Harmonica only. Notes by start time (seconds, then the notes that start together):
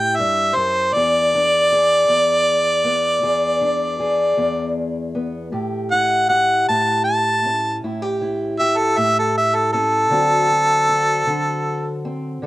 Already playing: G5
0.16 E5
0.56 C5
0.93 D5
5.91 F#5
6.29 F#5
6.69 A5
7.04 A5
8.59 E5
8.78 A4
8.98 E5
9.19 A4
9.37 E5
9.55 A4
9.73 A4